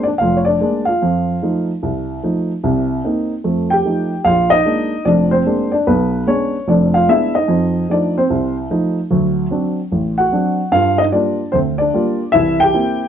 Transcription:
0.03 0.12 D4 medium
0.03 0.08 D5 medium
0.18 0.56 F1 medium
0.18 0.37 F5 medium
0.23 0.38 F4 medium
0.37 0.46 C#5 medium
0.45 0.60 D4 medium
0.45 0.88 D5 medium
0.61 0.89 G#3 medium
0.61 0.89 A#3 soft
0.61 0.89 D4 medium
0.85 1.65 F4 medium
0.85 1.63 F5 medium
1.02 1.37 F2 medium
1.42 1.70 F3 medium
1.42 1.70 A3 soft
1.42 1.70 D#4 medium
1.83 2.18 C2 medium
2.23 2.51 F3 soft
2.23 2.51 A3 soft
2.23 2.51 D#4 medium
2.64 2.98 C2 medium
2.64 2.99 C3 medium
3.04 3.32 A#3 soft
3.04 3.32 C4 soft
3.04 3.32 D#4 medium
3.44 3.79 F2 medium
3.44 3.79 A3 medium
3.70 4.22 G4 medium
3.70 4.27 G5 medium
3.85 4.12 F3 soft
3.85 4.13 A3 soft
3.85 4.13 D#4 soft
4.25 4.60 A#1 medium
4.25 4.50 F4 medium
4.25 4.52 F5 medium
4.50 5.03 D#4 medium
4.50 5.07 D#5 loud
4.65 4.93 G#3 soft
4.65 4.93 A#3 soft
4.65 4.93 D4 soft
5.05 5.41 F1 medium
5.05 5.41 F2 medium
5.05 5.31 D4 medium
5.05 5.30 D5 medium
5.31 5.70 C4 medium
5.31 5.73 C5 medium
5.46 5.74 G#3 medium
5.46 5.74 A#3 soft
5.46 5.73 D4 medium
5.72 5.87 D4 medium
5.72 5.85 D5 medium
5.87 6.22 B1 medium
5.87 6.26 B3 medium
5.87 6.29 B4 medium
6.27 6.55 G#3 medium
6.27 6.55 B3 soft
6.27 6.66 C#4 medium
6.27 6.55 D4 medium
6.27 6.69 C#5 medium
6.68 7.03 F1 medium
6.68 7.03 F2 medium
6.68 6.93 D4 medium
6.68 6.95 D5 medium
6.94 7.08 F4 medium
6.94 7.09 F5 medium
7.08 7.35 G#3 soft
7.08 7.36 B3 medium
7.08 7.36 D4 medium
7.08 7.33 E4 medium
7.08 7.33 E5 medium
7.35 7.86 D#4 medium
7.35 7.91 D#5 medium
7.48 7.83 F2 medium
7.89 8.17 F3 medium
7.89 8.17 A3 soft
7.89 8.15 D4 medium
7.89 8.17 D#4 medium
7.89 8.15 D5 medium
8.18 8.54 C4 medium
8.18 8.54 C5 medium
8.30 8.65 C2 medium
8.70 8.98 F3 medium
8.70 8.98 A3 soft
8.70 8.98 D#4 medium
9.11 9.45 D2 medium
9.11 9.45 F#3 medium
9.51 9.78 F#3 soft
9.51 9.79 C4 soft
9.51 9.79 D4 medium
9.92 10.26 A1 medium
10.18 10.70 F#4 medium
10.18 10.68 F#5 medium
10.32 10.59 F#3 medium
10.32 10.60 C4 soft
10.32 10.60 D4 medium
10.72 11.07 G2 medium
10.72 10.98 F4 medium
10.72 10.96 F5 medium
10.98 11.06 D#4 medium
10.98 11.03 D#5 medium
11.12 11.40 G3 soft
11.12 11.40 A#3 soft
11.12 11.51 D4 medium
11.12 11.40 F4 medium
11.12 11.54 D5 medium
11.52 11.88 D2 medium
11.52 11.61 C4 medium
11.52 11.58 C5 medium
11.78 12.31 D4 medium
11.78 12.30 D5 medium
11.94 12.21 G3 soft
11.94 12.21 A#3 soft
11.94 12.22 F4 medium
12.32 12.69 C2 medium
12.32 12.69 E3 medium
12.32 12.59 E4 medium
12.32 12.57 E5 medium
12.60 13.08 G4 medium
12.60 13.08 G5 loud
12.74 13.02 A#3 soft
12.74 13.02 C4 soft
12.74 13.02 E4 medium

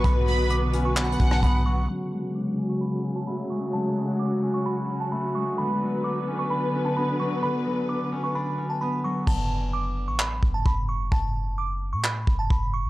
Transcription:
0.00 1.85 B2 medium
0.00 1.07 A3 medium
0.00 1.43 B3 loud
0.00 1.85 B3 medium
0.00 0.73 C#4 medium
0.00 0.80 D4 medium
0.00 1.85 F#4 medium
0.00 1.85 B4 medium
0.04 1.16 B1 loud
0.04 1.94 D3 medium
0.04 0.48 B5 loud
0.04 kick loud
0.04 closed hi-hat medium
0.27 1.65 F#3 medium
0.27 0.49 B5 medium
0.27 open hi-hat medium
0.50 0.83 D6 medium
0.50 closed hi-hat medium
0.73 1.19 C#4 loud
0.73 closed hi-hat medium
0.85 0.95 C#6 medium
0.96 2.64 D4 medium
0.96 1.85 F#5 medium
0.96 1.29 B5 medium
0.96 clap loud
0.96 closed hi-hat soft
1.04 closed hi-hat medium
1.12 closed hi-hat medium
1.19 1.42 B1 loud
1.19 2.57 C#4 medium
1.19 kick loud
1.19 closed hi-hat medium
1.31 1.41 A5 medium
1.31 cross-stick loud
1.43 1.87 B1 loud
1.43 4.54 B3 medium
1.43 1.63 B5 medium
1.43 kick loud
1.43 closed hi-hat medium
1.66 1.87 F#3 medium
1.66 1.86 C#6 medium
1.88 5.54 C#3 medium
1.88 3.72 F#3 medium
1.88 5.54 F#3 medium
1.88 9.23 F#4 medium
1.88 2.32 A5 medium
2.12 3.50 G#3 medium
2.35 2.67 D6 medium
2.58 3.04 C#4 medium
2.69 2.80 C#6 medium
2.81 4.65 F#4 medium
2.81 3.14 B5 medium
3.04 4.43 C#4 medium
3.16 3.26 A5 medium
3.27 5.12 A3 medium
3.27 3.48 B5 medium
3.50 3.95 G#3 medium
3.50 3.71 C#6 medium
3.73 5.63 F#3 medium
3.73 4.17 A5 medium
3.96 5.34 G#3 medium
4.19 4.52 D6 medium
4.43 4.89 C#4 medium
4.54 4.64 C#6 medium
4.66 7.09 F#4 medium
4.66 4.98 B5 medium
4.89 5.64 C#4 medium
5.00 5.11 A5 medium
5.12 8.45 A3 medium
5.12 5.33 B5 medium
5.35 5.63 G#3 medium
5.35 5.56 C#6 medium
5.58 9.24 D3 medium
5.58 7.42 D3 medium
5.58 9.24 B3 medium
5.58 9.24 B4 medium
5.58 6.02 B5 loud
5.82 7.18 F#3 medium
6.04 6.37 D6 medium
6.28 6.74 C#4 medium
6.39 6.49 C#6 medium
6.50 8.18 D4 medium
6.50 6.83 B5 medium
6.74 8.12 C#4 medium
6.85 6.95 A5 medium
6.97 8.82 B3 medium
6.97 7.17 B5 medium
7.19 7.48 F#3 medium
7.19 7.40 C#6 medium
7.43 9.32 D3 medium
7.43 7.86 B5 loud
7.65 9.03 F#3 medium
7.89 8.21 D6 medium
8.12 8.58 C#4 loud
8.24 8.34 C#6 medium
8.35 11.15 D4 medium
8.35 8.68 B5 medium
8.58 11.48 C#4 medium
8.70 8.80 A5 medium
8.81 11.93 B3 medium
8.81 9.02 B5 medium
9.04 9.32 F#3 medium
9.04 9.25 C#6 medium
9.27 10.09 F#1 loud
9.27 9.71 A5 loud
9.27 kick loud
9.27 crash medium
9.73 10.06 D6 medium
10.08 10.41 A1 loud
10.08 10.18 C#6 medium
10.20 10.52 B5 medium
10.20 clap loud
10.43 10.65 F#1 loud
10.43 kick loud
10.54 10.65 A5 medium
10.66 11.10 F#1 loud
10.66 10.86 B5 medium
10.66 kick loud
10.89 11.09 C#6 medium
11.12 11.94 F#1 loud
11.12 11.55 A5 loud
11.12 kick loud
11.58 11.91 D6 medium
11.93 12.26 A2 loud
11.93 12.03 C#6 medium
12.04 12.37 B5 medium
12.04 clap loud
12.27 12.50 F#1 loud
12.27 kick loud
12.39 12.49 A5 medium
12.50 12.86 F#1 loud
12.50 12.71 B5 medium
12.50 kick loud
12.74 12.90 C#6 medium
12.85 12.90 C#2 loud

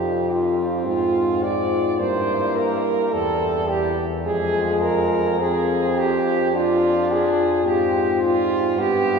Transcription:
0.00 0.89 F2 medium
0.00 2.02 C4 medium
0.00 0.86 F4 medium
0.00 0.33 G4 medium
0.32 0.86 F4 medium
0.87 2.02 G#2 medium
0.87 1.97 F4 medium
0.87 1.45 F4 medium
1.43 2.01 D5 medium
2.00 3.13 G2 medium
2.00 3.15 A#3 medium
2.00 3.95 E4 medium
2.00 2.57 C5 medium
2.56 3.14 A#4 medium
3.13 4.26 E2 medium
3.13 3.99 G3 medium
3.13 3.70 A4 loud
3.69 4.06 G4 medium
4.25 7.39 F2 medium
4.25 5.41 G#3 medium
4.25 5.36 F4 medium
4.25 4.84 G#4 loud
4.82 5.41 A#4 loud
5.40 6.55 C4 medium
5.40 6.52 F4 medium
5.40 6.00 G#4 medium
5.98 6.58 G4 loud
6.53 7.65 D4 medium
6.53 8.74 F4 medium
6.53 7.13 F4 medium
7.11 7.67 G#4 medium
7.64 8.79 G#2 medium
7.64 8.80 C4 medium
7.64 8.22 G4 medium
8.24 8.81 F4 loud
8.77 9.19 G2 medium
8.77 9.19 B3 medium
8.77 9.19 F4 medium
8.77 9.19 G4 loud

